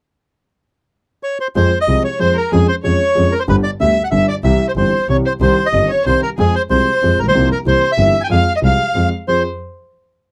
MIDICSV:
0, 0, Header, 1, 5, 480
1, 0, Start_track
1, 0, Key_signature, -4, "minor"
1, 0, Tempo, 322061
1, 876, Time_signature, 3, 2, 24, 8
1, 15376, End_track
2, 0, Start_track
2, 0, Title_t, "Bandoneon"
2, 0, Program_c, 0, 23
2, 1836, Note_on_c, 0, 73, 61
2, 2059, Note_off_c, 0, 73, 0
2, 2094, Note_on_c, 0, 72, 55
2, 2198, Note_off_c, 0, 72, 0
2, 2331, Note_on_c, 0, 72, 61
2, 2662, Note_off_c, 0, 72, 0
2, 2697, Note_on_c, 0, 75, 64
2, 3025, Note_off_c, 0, 75, 0
2, 3049, Note_on_c, 0, 73, 54
2, 3269, Note_off_c, 0, 73, 0
2, 3277, Note_on_c, 0, 72, 63
2, 3526, Note_off_c, 0, 72, 0
2, 3528, Note_on_c, 0, 70, 57
2, 3747, Note_off_c, 0, 70, 0
2, 3756, Note_on_c, 0, 68, 66
2, 3980, Note_off_c, 0, 68, 0
2, 4000, Note_on_c, 0, 72, 67
2, 4107, Note_off_c, 0, 72, 0
2, 4235, Note_on_c, 0, 73, 69
2, 4950, Note_on_c, 0, 70, 64
2, 4975, Note_off_c, 0, 73, 0
2, 5059, Note_on_c, 0, 72, 55
2, 5063, Note_off_c, 0, 70, 0
2, 5116, Note_off_c, 0, 72, 0
2, 5202, Note_on_c, 0, 71, 65
2, 5307, Note_off_c, 0, 71, 0
2, 5415, Note_on_c, 0, 74, 64
2, 5525, Note_off_c, 0, 74, 0
2, 5673, Note_on_c, 0, 76, 76
2, 6003, Note_off_c, 0, 76, 0
2, 6021, Note_on_c, 0, 78, 58
2, 6076, Note_off_c, 0, 78, 0
2, 6124, Note_on_c, 0, 76, 69
2, 6355, Note_off_c, 0, 76, 0
2, 6380, Note_on_c, 0, 74, 68
2, 6487, Note_off_c, 0, 74, 0
2, 6619, Note_on_c, 0, 76, 74
2, 6952, Note_off_c, 0, 76, 0
2, 6981, Note_on_c, 0, 72, 59
2, 7034, Note_off_c, 0, 72, 0
2, 7116, Note_on_c, 0, 72, 61
2, 7556, Note_off_c, 0, 72, 0
2, 7603, Note_on_c, 0, 73, 69
2, 7706, Note_off_c, 0, 73, 0
2, 7841, Note_on_c, 0, 72, 62
2, 7946, Note_off_c, 0, 72, 0
2, 8080, Note_on_c, 0, 72, 68
2, 8436, Note_on_c, 0, 75, 70
2, 8445, Note_off_c, 0, 72, 0
2, 8796, Note_on_c, 0, 73, 63
2, 8805, Note_off_c, 0, 75, 0
2, 9017, Note_off_c, 0, 73, 0
2, 9034, Note_on_c, 0, 72, 70
2, 9254, Note_off_c, 0, 72, 0
2, 9285, Note_on_c, 0, 70, 67
2, 9388, Note_off_c, 0, 70, 0
2, 9529, Note_on_c, 0, 68, 72
2, 9763, Note_off_c, 0, 68, 0
2, 9768, Note_on_c, 0, 72, 68
2, 9870, Note_off_c, 0, 72, 0
2, 9989, Note_on_c, 0, 72, 73
2, 10723, Note_off_c, 0, 72, 0
2, 10725, Note_on_c, 0, 70, 66
2, 10824, Note_off_c, 0, 70, 0
2, 10851, Note_on_c, 0, 72, 63
2, 11168, Note_off_c, 0, 72, 0
2, 11202, Note_on_c, 0, 70, 72
2, 11303, Note_off_c, 0, 70, 0
2, 11439, Note_on_c, 0, 72, 73
2, 11796, Note_off_c, 0, 72, 0
2, 11803, Note_on_c, 0, 76, 75
2, 12237, Note_on_c, 0, 80, 55
2, 12250, Note_off_c, 0, 76, 0
2, 12267, Note_off_c, 0, 80, 0
2, 12281, Note_on_c, 0, 79, 62
2, 12329, Note_off_c, 0, 79, 0
2, 12386, Note_on_c, 0, 77, 73
2, 12716, Note_off_c, 0, 77, 0
2, 12768, Note_on_c, 0, 75, 60
2, 12815, Note_off_c, 0, 75, 0
2, 12891, Note_on_c, 0, 77, 69
2, 13552, Note_off_c, 0, 77, 0
2, 13833, Note_on_c, 0, 72, 66
2, 14055, Note_off_c, 0, 72, 0
2, 15376, End_track
3, 0, Start_track
3, 0, Title_t, "Violin"
3, 0, Program_c, 1, 40
3, 2322, Note_on_c, 1, 72, 57
3, 2657, Note_off_c, 1, 72, 0
3, 2685, Note_on_c, 1, 75, 46
3, 3019, Note_off_c, 1, 75, 0
3, 3055, Note_on_c, 1, 73, 45
3, 3272, Note_off_c, 1, 73, 0
3, 3285, Note_on_c, 1, 72, 61
3, 3506, Note_off_c, 1, 72, 0
3, 3512, Note_on_c, 1, 70, 50
3, 3739, Note_off_c, 1, 70, 0
3, 3749, Note_on_c, 1, 68, 50
3, 3973, Note_off_c, 1, 68, 0
3, 3981, Note_on_c, 1, 72, 55
3, 4093, Note_off_c, 1, 72, 0
3, 4217, Note_on_c, 1, 73, 49
3, 4893, Note_off_c, 1, 73, 0
3, 4952, Note_on_c, 1, 70, 55
3, 5064, Note_off_c, 1, 70, 0
3, 5085, Note_on_c, 1, 72, 48
3, 5136, Note_off_c, 1, 72, 0
3, 5199, Note_on_c, 1, 71, 55
3, 5305, Note_off_c, 1, 71, 0
3, 5439, Note_on_c, 1, 74, 52
3, 5544, Note_off_c, 1, 74, 0
3, 5679, Note_on_c, 1, 76, 53
3, 6006, Note_off_c, 1, 76, 0
3, 6041, Note_on_c, 1, 78, 57
3, 6091, Note_off_c, 1, 78, 0
3, 6172, Note_on_c, 1, 76, 60
3, 6381, Note_off_c, 1, 76, 0
3, 6404, Note_on_c, 1, 74, 54
3, 6506, Note_off_c, 1, 74, 0
3, 6618, Note_on_c, 1, 76, 62
3, 6952, Note_off_c, 1, 76, 0
3, 6986, Note_on_c, 1, 72, 46
3, 7038, Note_off_c, 1, 72, 0
3, 7115, Note_on_c, 1, 72, 51
3, 7555, Note_off_c, 1, 72, 0
3, 7588, Note_on_c, 1, 73, 61
3, 7695, Note_off_c, 1, 73, 0
3, 7831, Note_on_c, 1, 72, 54
3, 7937, Note_off_c, 1, 72, 0
3, 8065, Note_on_c, 1, 72, 57
3, 8402, Note_off_c, 1, 72, 0
3, 8433, Note_on_c, 1, 75, 58
3, 8767, Note_off_c, 1, 75, 0
3, 8784, Note_on_c, 1, 73, 60
3, 9010, Note_off_c, 1, 73, 0
3, 9018, Note_on_c, 1, 72, 58
3, 9246, Note_off_c, 1, 72, 0
3, 9277, Note_on_c, 1, 70, 56
3, 9383, Note_off_c, 1, 70, 0
3, 9504, Note_on_c, 1, 68, 54
3, 9727, Note_off_c, 1, 68, 0
3, 9767, Note_on_c, 1, 72, 57
3, 9869, Note_off_c, 1, 72, 0
3, 10009, Note_on_c, 1, 72, 54
3, 10663, Note_off_c, 1, 72, 0
3, 10728, Note_on_c, 1, 70, 61
3, 10825, Note_off_c, 1, 70, 0
3, 10858, Note_on_c, 1, 72, 59
3, 11171, Note_off_c, 1, 72, 0
3, 11218, Note_on_c, 1, 70, 59
3, 11316, Note_off_c, 1, 70, 0
3, 11452, Note_on_c, 1, 72, 57
3, 11768, Note_off_c, 1, 72, 0
3, 11813, Note_on_c, 1, 76, 63
3, 12212, Note_off_c, 1, 76, 0
3, 12244, Note_on_c, 1, 80, 47
3, 12271, Note_off_c, 1, 80, 0
3, 12285, Note_on_c, 1, 79, 61
3, 12332, Note_off_c, 1, 79, 0
3, 12414, Note_on_c, 1, 77, 67
3, 12730, Note_off_c, 1, 77, 0
3, 12762, Note_on_c, 1, 75, 60
3, 12810, Note_off_c, 1, 75, 0
3, 12885, Note_on_c, 1, 77, 53
3, 13549, Note_off_c, 1, 77, 0
3, 13833, Note_on_c, 1, 72, 51
3, 14055, Note_off_c, 1, 72, 0
3, 15376, End_track
4, 0, Start_track
4, 0, Title_t, "Grand piano"
4, 0, Program_c, 2, 0
4, 2314, Note_on_c, 2, 41, 56
4, 2314, Note_on_c, 2, 56, 45
4, 2315, Note_on_c, 2, 53, 57
4, 2316, Note_on_c, 2, 60, 40
4, 2319, Note_on_c, 2, 68, 50
4, 2519, Note_off_c, 2, 41, 0
4, 2519, Note_off_c, 2, 56, 0
4, 2520, Note_off_c, 2, 60, 0
4, 2521, Note_off_c, 2, 53, 0
4, 2521, Note_off_c, 2, 68, 0
4, 2793, Note_on_c, 2, 53, 36
4, 2797, Note_on_c, 2, 60, 30
4, 2798, Note_on_c, 2, 56, 33
4, 2799, Note_on_c, 2, 36, 38
4, 2800, Note_on_c, 2, 48, 40
4, 2801, Note_on_c, 2, 68, 37
4, 2999, Note_off_c, 2, 53, 0
4, 3002, Note_off_c, 2, 36, 0
4, 3002, Note_off_c, 2, 56, 0
4, 3002, Note_off_c, 2, 60, 0
4, 3003, Note_off_c, 2, 48, 0
4, 3003, Note_off_c, 2, 68, 0
4, 3266, Note_on_c, 2, 56, 31
4, 3269, Note_on_c, 2, 53, 42
4, 3274, Note_on_c, 2, 41, 42
4, 3275, Note_on_c, 2, 60, 33
4, 3275, Note_on_c, 2, 68, 40
4, 3475, Note_off_c, 2, 56, 0
4, 3479, Note_off_c, 2, 41, 0
4, 3480, Note_off_c, 2, 60, 0
4, 3480, Note_off_c, 2, 68, 0
4, 3481, Note_off_c, 2, 53, 0
4, 3752, Note_on_c, 2, 53, 58
4, 3752, Note_on_c, 2, 56, 46
4, 3755, Note_on_c, 2, 41, 53
4, 3757, Note_on_c, 2, 61, 45
4, 3758, Note_on_c, 2, 68, 61
4, 3957, Note_off_c, 2, 56, 0
4, 3958, Note_off_c, 2, 41, 0
4, 3958, Note_off_c, 2, 53, 0
4, 3959, Note_off_c, 2, 61, 0
4, 3960, Note_off_c, 2, 68, 0
4, 4223, Note_on_c, 2, 53, 41
4, 4229, Note_on_c, 2, 68, 40
4, 4230, Note_on_c, 2, 56, 31
4, 4230, Note_on_c, 2, 61, 31
4, 4232, Note_on_c, 2, 41, 41
4, 4433, Note_off_c, 2, 53, 0
4, 4434, Note_off_c, 2, 56, 0
4, 4434, Note_off_c, 2, 61, 0
4, 4434, Note_off_c, 2, 68, 0
4, 4435, Note_off_c, 2, 41, 0
4, 4696, Note_on_c, 2, 56, 32
4, 4697, Note_on_c, 2, 61, 34
4, 4699, Note_on_c, 2, 41, 39
4, 4699, Note_on_c, 2, 53, 45
4, 4703, Note_on_c, 2, 68, 42
4, 4907, Note_off_c, 2, 56, 0
4, 4907, Note_off_c, 2, 61, 0
4, 4908, Note_off_c, 2, 41, 0
4, 4909, Note_off_c, 2, 53, 0
4, 4910, Note_off_c, 2, 68, 0
4, 5186, Note_on_c, 2, 50, 52
4, 5188, Note_on_c, 2, 43, 59
4, 5190, Note_on_c, 2, 55, 45
4, 5192, Note_on_c, 2, 31, 64
4, 5192, Note_on_c, 2, 59, 51
4, 5194, Note_on_c, 2, 67, 57
4, 5389, Note_off_c, 2, 50, 0
4, 5390, Note_off_c, 2, 43, 0
4, 5391, Note_off_c, 2, 55, 0
4, 5392, Note_off_c, 2, 31, 0
4, 5392, Note_off_c, 2, 59, 0
4, 5393, Note_off_c, 2, 67, 0
4, 5663, Note_on_c, 2, 50, 41
4, 5663, Note_on_c, 2, 55, 33
4, 5664, Note_on_c, 2, 38, 42
4, 5666, Note_on_c, 2, 59, 29
4, 5669, Note_on_c, 2, 67, 41
4, 5866, Note_off_c, 2, 38, 0
4, 5866, Note_off_c, 2, 55, 0
4, 5867, Note_off_c, 2, 50, 0
4, 5867, Note_off_c, 2, 59, 0
4, 5869, Note_off_c, 2, 67, 0
4, 6132, Note_on_c, 2, 55, 32
4, 6133, Note_on_c, 2, 50, 37
4, 6136, Note_on_c, 2, 31, 45
4, 6136, Note_on_c, 2, 43, 45
4, 6141, Note_on_c, 2, 59, 35
4, 6144, Note_on_c, 2, 67, 41
4, 6338, Note_off_c, 2, 55, 0
4, 6339, Note_off_c, 2, 50, 0
4, 6340, Note_off_c, 2, 31, 0
4, 6340, Note_off_c, 2, 43, 0
4, 6343, Note_off_c, 2, 59, 0
4, 6344, Note_off_c, 2, 67, 0
4, 6616, Note_on_c, 2, 52, 45
4, 6622, Note_on_c, 2, 48, 59
4, 6622, Note_on_c, 2, 55, 42
4, 6625, Note_on_c, 2, 36, 63
4, 6627, Note_on_c, 2, 67, 56
4, 6629, Note_on_c, 2, 60, 46
4, 6818, Note_off_c, 2, 52, 0
4, 6821, Note_off_c, 2, 48, 0
4, 6821, Note_off_c, 2, 55, 0
4, 6823, Note_off_c, 2, 36, 0
4, 6824, Note_off_c, 2, 67, 0
4, 6825, Note_off_c, 2, 60, 0
4, 7095, Note_on_c, 2, 52, 34
4, 7099, Note_on_c, 2, 55, 29
4, 7101, Note_on_c, 2, 43, 38
4, 7102, Note_on_c, 2, 31, 43
4, 7109, Note_on_c, 2, 60, 31
4, 7110, Note_on_c, 2, 67, 36
4, 7298, Note_off_c, 2, 52, 0
4, 7300, Note_off_c, 2, 55, 0
4, 7301, Note_off_c, 2, 43, 0
4, 7302, Note_off_c, 2, 31, 0
4, 7305, Note_off_c, 2, 60, 0
4, 7305, Note_off_c, 2, 67, 0
4, 7576, Note_on_c, 2, 52, 34
4, 7585, Note_on_c, 2, 55, 34
4, 7586, Note_on_c, 2, 36, 45
4, 7587, Note_on_c, 2, 60, 32
4, 7589, Note_on_c, 2, 67, 36
4, 7591, Note_on_c, 2, 48, 40
4, 7781, Note_off_c, 2, 52, 0
4, 7786, Note_off_c, 2, 36, 0
4, 7786, Note_off_c, 2, 55, 0
4, 7787, Note_off_c, 2, 60, 0
4, 7787, Note_off_c, 2, 67, 0
4, 7789, Note_off_c, 2, 48, 0
4, 8054, Note_on_c, 2, 51, 52
4, 8060, Note_on_c, 2, 55, 43
4, 8064, Note_on_c, 2, 36, 58
4, 8064, Note_on_c, 2, 60, 48
4, 8065, Note_on_c, 2, 48, 58
4, 8066, Note_on_c, 2, 67, 58
4, 8262, Note_off_c, 2, 51, 0
4, 8265, Note_off_c, 2, 55, 0
4, 8267, Note_off_c, 2, 36, 0
4, 8267, Note_off_c, 2, 48, 0
4, 8267, Note_off_c, 2, 60, 0
4, 8268, Note_off_c, 2, 67, 0
4, 8545, Note_on_c, 2, 51, 32
4, 8549, Note_on_c, 2, 43, 42
4, 8550, Note_on_c, 2, 55, 31
4, 8552, Note_on_c, 2, 31, 38
4, 8552, Note_on_c, 2, 60, 31
4, 8557, Note_on_c, 2, 67, 37
4, 8749, Note_off_c, 2, 51, 0
4, 8751, Note_off_c, 2, 43, 0
4, 8752, Note_off_c, 2, 55, 0
4, 8753, Note_off_c, 2, 31, 0
4, 8753, Note_off_c, 2, 60, 0
4, 8755, Note_off_c, 2, 67, 0
4, 9036, Note_on_c, 2, 48, 45
4, 9036, Note_on_c, 2, 51, 36
4, 9037, Note_on_c, 2, 36, 45
4, 9037, Note_on_c, 2, 55, 36
4, 9040, Note_on_c, 2, 67, 40
4, 9041, Note_on_c, 2, 60, 33
4, 9234, Note_off_c, 2, 36, 0
4, 9234, Note_off_c, 2, 48, 0
4, 9234, Note_off_c, 2, 51, 0
4, 9234, Note_off_c, 2, 55, 0
4, 9236, Note_off_c, 2, 60, 0
4, 9236, Note_off_c, 2, 67, 0
4, 9502, Note_on_c, 2, 53, 65
4, 9504, Note_on_c, 2, 41, 64
4, 9507, Note_on_c, 2, 56, 50
4, 9508, Note_on_c, 2, 60, 48
4, 9515, Note_on_c, 2, 68, 55
4, 9706, Note_off_c, 2, 41, 0
4, 9706, Note_off_c, 2, 53, 0
4, 9707, Note_off_c, 2, 56, 0
4, 9708, Note_off_c, 2, 60, 0
4, 9711, Note_off_c, 2, 68, 0
4, 9976, Note_on_c, 2, 53, 35
4, 9980, Note_on_c, 2, 36, 40
4, 9981, Note_on_c, 2, 56, 33
4, 9985, Note_on_c, 2, 48, 38
4, 9988, Note_on_c, 2, 60, 36
4, 9991, Note_on_c, 2, 68, 35
4, 10180, Note_off_c, 2, 53, 0
4, 10182, Note_off_c, 2, 36, 0
4, 10182, Note_off_c, 2, 56, 0
4, 10184, Note_off_c, 2, 48, 0
4, 10186, Note_off_c, 2, 60, 0
4, 10187, Note_off_c, 2, 68, 0
4, 10472, Note_on_c, 2, 53, 46
4, 10475, Note_on_c, 2, 56, 35
4, 10478, Note_on_c, 2, 60, 35
4, 10478, Note_on_c, 2, 68, 40
4, 10479, Note_on_c, 2, 41, 40
4, 10668, Note_off_c, 2, 53, 0
4, 10668, Note_off_c, 2, 56, 0
4, 10670, Note_off_c, 2, 41, 0
4, 10670, Note_off_c, 2, 60, 0
4, 10670, Note_off_c, 2, 68, 0
4, 10759, Note_on_c, 2, 33, 39
4, 10819, Note_off_c, 2, 33, 0
4, 10824, Note_on_c, 2, 34, 47
4, 10881, Note_off_c, 2, 34, 0
4, 10883, Note_on_c, 2, 35, 54
4, 10933, Note_on_c, 2, 53, 52
4, 10934, Note_on_c, 2, 48, 64
4, 10935, Note_on_c, 2, 36, 62
4, 10938, Note_on_c, 2, 60, 46
4, 10940, Note_off_c, 2, 35, 0
4, 10940, Note_on_c, 2, 58, 52
4, 10943, Note_on_c, 2, 67, 57
4, 11135, Note_off_c, 2, 53, 0
4, 11136, Note_off_c, 2, 36, 0
4, 11136, Note_off_c, 2, 48, 0
4, 11137, Note_off_c, 2, 60, 0
4, 11138, Note_off_c, 2, 58, 0
4, 11140, Note_off_c, 2, 67, 0
4, 11409, Note_on_c, 2, 52, 34
4, 11411, Note_on_c, 2, 36, 41
4, 11413, Note_on_c, 2, 48, 41
4, 11415, Note_on_c, 2, 58, 33
4, 11415, Note_on_c, 2, 60, 33
4, 11422, Note_on_c, 2, 67, 36
4, 11612, Note_off_c, 2, 52, 0
4, 11613, Note_off_c, 2, 36, 0
4, 11614, Note_off_c, 2, 48, 0
4, 11615, Note_off_c, 2, 58, 0
4, 11615, Note_off_c, 2, 60, 0
4, 11619, Note_off_c, 2, 67, 0
4, 11888, Note_on_c, 2, 52, 38
4, 11894, Note_on_c, 2, 58, 32
4, 11896, Note_on_c, 2, 43, 42
4, 11897, Note_on_c, 2, 31, 48
4, 11900, Note_on_c, 2, 60, 35
4, 11901, Note_on_c, 2, 67, 45
4, 12092, Note_off_c, 2, 52, 0
4, 12094, Note_off_c, 2, 58, 0
4, 12096, Note_off_c, 2, 31, 0
4, 12096, Note_off_c, 2, 43, 0
4, 12098, Note_off_c, 2, 60, 0
4, 12098, Note_off_c, 2, 67, 0
4, 12359, Note_on_c, 2, 53, 59
4, 12364, Note_on_c, 2, 56, 53
4, 12366, Note_on_c, 2, 41, 56
4, 12368, Note_on_c, 2, 68, 55
4, 12370, Note_on_c, 2, 60, 46
4, 12570, Note_off_c, 2, 53, 0
4, 12570, Note_off_c, 2, 56, 0
4, 12572, Note_off_c, 2, 41, 0
4, 12572, Note_off_c, 2, 68, 0
4, 12573, Note_off_c, 2, 60, 0
4, 12837, Note_on_c, 2, 48, 38
4, 12838, Note_on_c, 2, 56, 33
4, 12840, Note_on_c, 2, 36, 40
4, 12842, Note_on_c, 2, 53, 35
4, 12843, Note_on_c, 2, 60, 32
4, 12850, Note_on_c, 2, 68, 38
4, 13049, Note_off_c, 2, 48, 0
4, 13050, Note_off_c, 2, 36, 0
4, 13050, Note_off_c, 2, 56, 0
4, 13051, Note_off_c, 2, 53, 0
4, 13052, Note_off_c, 2, 60, 0
4, 13055, Note_off_c, 2, 68, 0
4, 13331, Note_on_c, 2, 53, 39
4, 13334, Note_on_c, 2, 56, 37
4, 13338, Note_on_c, 2, 41, 42
4, 13338, Note_on_c, 2, 60, 34
4, 13338, Note_on_c, 2, 68, 36
4, 13542, Note_off_c, 2, 56, 0
4, 13543, Note_off_c, 2, 41, 0
4, 13543, Note_off_c, 2, 53, 0
4, 13544, Note_off_c, 2, 60, 0
4, 13544, Note_off_c, 2, 68, 0
4, 13830, Note_on_c, 2, 60, 32
4, 13832, Note_on_c, 2, 65, 38
4, 13833, Note_on_c, 2, 41, 38
4, 13836, Note_on_c, 2, 68, 44
4, 14031, Note_off_c, 2, 60, 0
4, 14032, Note_off_c, 2, 41, 0
4, 14032, Note_off_c, 2, 65, 0
4, 14033, Note_off_c, 2, 68, 0
4, 15376, End_track
5, 0, Start_track
5, 0, Title_t, "Double bass"
5, 0, Program_c, 3, 43
5, 2318, Note_on_c, 3, 41, 63
5, 2521, Note_off_c, 3, 41, 0
5, 2802, Note_on_c, 3, 36, 50
5, 3004, Note_off_c, 3, 36, 0
5, 3285, Note_on_c, 3, 41, 41
5, 3485, Note_off_c, 3, 41, 0
5, 3765, Note_on_c, 3, 41, 66
5, 3963, Note_off_c, 3, 41, 0
5, 4245, Note_on_c, 3, 41, 45
5, 4442, Note_off_c, 3, 41, 0
5, 4721, Note_on_c, 3, 41, 47
5, 4919, Note_off_c, 3, 41, 0
5, 5199, Note_on_c, 3, 31, 72
5, 5396, Note_off_c, 3, 31, 0
5, 5675, Note_on_c, 3, 38, 47
5, 5871, Note_off_c, 3, 38, 0
5, 6144, Note_on_c, 3, 31, 46
5, 6344, Note_off_c, 3, 31, 0
5, 6612, Note_on_c, 3, 36, 66
5, 6816, Note_off_c, 3, 36, 0
5, 7090, Note_on_c, 3, 31, 46
5, 7296, Note_off_c, 3, 31, 0
5, 7573, Note_on_c, 3, 36, 45
5, 7780, Note_off_c, 3, 36, 0
5, 8055, Note_on_c, 3, 36, 64
5, 8262, Note_off_c, 3, 36, 0
5, 8544, Note_on_c, 3, 31, 47
5, 8749, Note_off_c, 3, 31, 0
5, 9030, Note_on_c, 3, 36, 45
5, 9231, Note_off_c, 3, 36, 0
5, 9516, Note_on_c, 3, 41, 70
5, 9712, Note_off_c, 3, 41, 0
5, 9990, Note_on_c, 3, 36, 51
5, 10187, Note_off_c, 3, 36, 0
5, 10472, Note_on_c, 3, 41, 50
5, 10667, Note_off_c, 3, 41, 0
5, 10704, Note_on_c, 3, 34, 48
5, 10931, Note_off_c, 3, 34, 0
5, 10940, Note_on_c, 3, 36, 67
5, 11139, Note_off_c, 3, 36, 0
5, 11416, Note_on_c, 3, 36, 49
5, 11615, Note_off_c, 3, 36, 0
5, 11898, Note_on_c, 3, 31, 44
5, 12096, Note_off_c, 3, 31, 0
5, 12384, Note_on_c, 3, 41, 67
5, 12580, Note_off_c, 3, 41, 0
5, 12864, Note_on_c, 3, 36, 51
5, 13062, Note_off_c, 3, 36, 0
5, 13340, Note_on_c, 3, 41, 47
5, 13544, Note_off_c, 3, 41, 0
5, 13827, Note_on_c, 3, 41, 38
5, 14029, Note_off_c, 3, 41, 0
5, 15376, End_track
0, 0, End_of_file